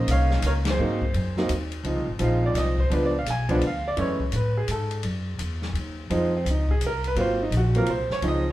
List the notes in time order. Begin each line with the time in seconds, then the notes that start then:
Already playing: G#3 A#3 C#4 D#4 D#5
0.07 C2, hi-hat pedal, ride
0.11 C#5 F5
0.31 snare
0.42 C#2, hi-hat pedal, ride
0.46 A#4 C#5
0.65 snare, ride
0.70 G#4 C5
0.79 G#2 F#3 A#3 C4 D#4
1.02 kick
1.14 F#2, ride
1.37 F#3 A#3 C4 D#4, snare
1.49 D#2, hi-hat pedal, ride
1.72 ride
1.83 C#2 F3 G#3 C4 D#4, ride
1.96 C2
2.07 G#1
2.19 A#1 F3 G#3 C4 D#4, hi-hat pedal, ride
2.24 F5
2.46 D5
2.54 C2, snare, hi-hat pedal, ride
2.58 D#5
2.78 C5, kick
2.90 C#2 F3 G#3 B3 D4, ride
2.94 B4
3.06 D5
3.19 F5
3.26 B1, snare, hi-hat pedal, ride
3.30 G#5
3.49 F3 G#3 B3 D4 F#5, kick, ride
3.61 D2, ride
3.67 F5
3.88 D5
3.97 F#2 E3 G#3 A3 C#4, ride
4.01 C#5
4.20 kick
4.32 A2, hi-hat pedal, ride
4.36 B4
4.57 G#4
4.68 G#2 A4, hi-hat pedal, ride
4.91 ride
5.03 F#2, ride
5.38 E2, hi-hat pedal, ride
5.62 snare
5.73 D#2, ride
6.10 F2 F3 G#3 C4 D#4, ride
6.37 C4
6.45 C#2, hi-hat pedal, ride
6.50 D#4
6.69 G#4, kick
6.81 C2, hi-hat pedal, ride
6.86 A#4
7.04 B4, ride
7.15 G#1 F#3 A#3 C4 F4 B4, ride
7.20 C5
7.43 D#4
7.50 A#1, hi-hat pedal, ride
7.57 F#4
7.75 F#3 A#3 C4 F4 A#4, ride
7.86 C2, ride
7.90 C5
8.09 C#5, muted upright bass stroke, snare
8.21 C#2 F3 G#3 C4 D#4, ride
8.28 D#5